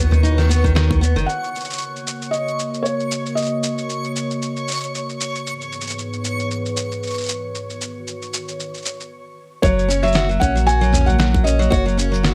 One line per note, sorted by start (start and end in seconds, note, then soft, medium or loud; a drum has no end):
0.00 1.16 D#2 loud
0.00 1.26 D#3 medium
0.00 0.10 B3 medium
0.00 1.24 B3 medium
0.00 1.26 F#4 medium
0.00 1.26 B4 medium
0.00 1.27 C#5 medium
0.00 1.27 C#6 medium
0.11 0.22 D#3 medium
0.11 mid tom medium
0.11 shaker soft
0.23 0.37 D#4 medium
0.23 shaker soft
0.38 0.49 D#3 medium
0.38 snare soft
0.38 shaker soft
0.46 0.63 B3 medium
0.46 snare soft
0.51 shaker medium
0.55 snare soft
0.64 0.74 D#3 medium
0.64 kick medium
0.64 shaker soft
0.75 1.00 D#3 medium
0.75 snare loud
0.75 shaker soft
0.91 kick loud
0.91 shaker soft
1.01 1.15 B3 medium
1.01 shaker medium
1.16 1.26 F#1 medium
1.16 1.27 D#3 loud
1.16 shaker soft
1.26 5.42 C#3 medium
1.26 5.42 A#3 medium
1.26 5.42 F#4 medium
1.26 5.42 A#4 medium
1.26 9.11 C#5 medium
1.26 2.28 F#5 medium
1.26 9.11 C#6 medium
1.26 shaker soft
1.44 shaker soft
1.55 shaker soft
1.60 shaker soft
1.64 shaker soft
1.70 shaker soft
1.73 shaker medium
1.78 shaker medium
1.82 shaker soft
1.96 shaker soft
2.07 shaker medium
2.22 shaker soft
2.31 2.86 D#5 medium
2.31 shaker soft
2.48 shaker soft
2.59 shaker medium
2.74 shaker soft
2.83 3.32 C#5 medium
2.83 shaker soft
3.00 shaker soft
3.11 shaker medium
3.26 shaker soft
3.35 5.15 D#5 medium
3.35 shaker soft
3.42 shaker soft
3.45 shaker soft
3.46 shaker soft
3.63 shaker medium
3.78 shaker soft
3.90 shaker soft
4.04 shaker soft
4.16 shaker medium
4.31 shaker soft
4.42 shaker soft
4.56 shaker soft
4.68 shaker medium
4.71 shaker medium
4.74 shaker soft
4.77 shaker soft
4.80 shaker soft
4.83 shaker soft
4.95 shaker soft
5.09 shaker soft
5.21 shaker medium
5.35 shaker soft
5.45 7.52 G#2 medium
5.45 7.52 E3 medium
5.45 9.07 B3 medium
5.45 7.52 G#4 medium
5.45 9.07 B4 medium
5.45 shaker soft
5.61 shaker soft
5.72 shaker soft
5.81 shaker soft
5.87 shaker soft
5.90 shaker medium
5.99 shaker soft
6.13 shaker soft
6.24 shaker medium
6.39 shaker soft
6.51 shaker soft
6.65 shaker soft
6.77 shaker medium
6.92 shaker soft
7.03 shaker soft
7.07 shaker soft
7.10 shaker soft
7.14 shaker soft
7.18 shaker soft
7.20 shaker soft
7.23 shaker soft
7.26 shaker soft
7.29 shaker medium
7.54 9.09 D#3 medium
7.54 9.09 F#4 medium
7.54 shaker soft
7.70 shaker soft
7.81 shaker medium
8.07 shaker soft
8.22 shaker soft
8.34 shaker medium
8.48 shaker soft
8.60 shaker soft
8.74 shaker soft
8.77 shaker soft
8.82 shaker soft
8.86 shaker medium
9.00 shaker soft
9.62 10.38 F#1 medium
9.62 12.34 C#3 medium
9.62 9.88 F#3 medium
9.62 12.34 A#3 medium
9.62 12.34 F#4 medium
9.62 12.34 A#4 medium
9.62 10.05 C#5 loud
9.62 kick loud
9.62 shaker soft
9.79 shaker soft
9.88 10.02 C#4 medium
9.88 shaker medium
10.03 10.14 F#3 medium
10.03 10.38 E5 loud
10.03 shaker soft
10.07 shaker soft
10.12 10.28 F#4 medium
10.12 snare medium
10.12 shaker soft
10.16 shaker soft
10.29 10.40 F#3 medium
10.29 shaker soft
10.40 11.69 A#1 loud
10.40 10.54 C#4 medium
10.40 10.67 F#5 medium
10.40 kick medium
10.40 shaker medium
10.55 10.66 F#3 medium
10.55 shaker soft
10.66 10.80 F#4 medium
10.66 11.05 G#5 loud
10.66 shaker soft
10.81 10.92 F#3 medium
10.81 shaker soft
10.92 11.06 C#4 medium
10.92 mid tom medium
10.92 shaker medium
10.98 mid tom soft
11.01 mid tom soft
11.05 11.17 F#3 medium
11.05 11.46 F#5 loud
11.05 mid tom soft
11.08 mid tom soft
11.08 shaker soft
11.11 mid tom soft
11.14 mid tom soft
11.17 11.44 F#3 medium
11.17 snare medium
11.17 mid tom soft
11.17 shaker soft
11.35 kick loud
11.35 shaker soft
11.44 11.58 C#4 medium
11.44 11.72 D#5 medium
11.44 shaker medium
11.59 11.71 F#3 loud
11.59 shaker soft
11.70 12.34 F#1 loud
11.70 11.84 F#4 loud
11.70 12.34 C#5 medium
11.70 kick loud
11.70 shaker soft
11.86 11.96 F#3 medium
11.86 shaker soft
11.97 12.11 C#4 medium
11.97 shaker medium
12.12 12.22 F#3 medium
12.12 shaker soft
12.23 12.34 F#4 medium
12.23 snare loud
12.23 shaker soft